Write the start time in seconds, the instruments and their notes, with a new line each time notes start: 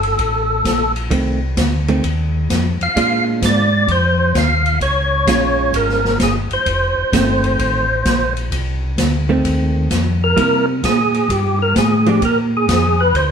Already playing: tonewheel organ G1 A4
0.03 ride
0.18 tonewheel organ A1, kick, ride
0.64 tonewheel organ A#1, kick, snare, hi-hat pedal, ride
0.96 ride
1.11 tonewheel organ C2, hollow-body jazz guitar D#3 A3 C4, kick, ride
1.57 tonewheel organ D2, kick, snare, hi-hat pedal, ride
1.88 hollow-body jazz guitar D#3 A3 C4, ride
2.03 tonewheel organ D#2, kick, ride
2.50 tonewheel organ F2, kick, snare, hi-hat pedal, ride
2.81 tonewheel organ F2 F5, ride
2.96 tonewheel organ A#2, hollow-body jazz guitar G#3 D4 F4, kick, ride
3.42 tonewheel organ G#2 D5, kick, snare, hi-hat pedal, ride
3.88 tonewheel organ F2 C5, kick, ride
4.34 tonewheel organ D#2 F5, kick, snare, hi-hat pedal, ride
4.66 ride
4.80 tonewheel organ C#2 C#5, kick, ride
5.27 tonewheel organ A#1, hollow-body jazz guitar G#3 C#4 F4, kick, snare, hi-hat pedal, ride
5.73 tonewheel organ G#1 A#4, kick, ride
5.89 snare
6.05 snare
6.20 tonewheel organ G1 G#4, kick, snare, hi-hat pedal, ride
6.50 tonewheel organ G1 C5, ride
6.66 tonewheel organ F1, kick, ride
6.97 tonewheel organ F1
7.12 tonewheel organ G1, hollow-body jazz guitar D#3 A3 C4, kick, snare, hi-hat pedal, ride
7.44 ride
7.59 tonewheel organ A1, kick, ride
8.05 tonewheel organ A#1, kick, snare, hi-hat pedal, ride
8.37 ride
8.52 tonewheel organ C2, kick, ride
8.98 tonewheel organ D2, kick, snare, hi-hat pedal, ride
9.29 hollow-body jazz guitar D#3 A3 C4
9.44 tonewheel organ D#2, kick, ride
9.90 tonewheel organ F2, kick, snare, hi-hat pedal, ride
10.24 tonewheel organ A#4
10.37 tonewheel organ C3, hollow-body jazz guitar G3 A#3 E4, kick, ride
10.83 tonewheel organ A#2 G#4, kick, snare, hi-hat pedal, ride
11.14 ride
11.29 tonewheel organ G2 G4, kick, ride
11.62 tonewheel organ A#4
11.76 tonewheel organ A2 G#4, kick, snare, hi-hat pedal, ride
12.06 hollow-body jazz guitar F3 G#3 D4, tonewheel organ G4, ride
12.22 tonewheel organ A#2 A#4, kick, ride
12.57 tonewheel organ G#4
12.68 tonewheel organ F2, kick, snare, hi-hat pedal, ride
13.00 tonewheel organ B4
13.14 tonewheel organ D2 C5, kick, ride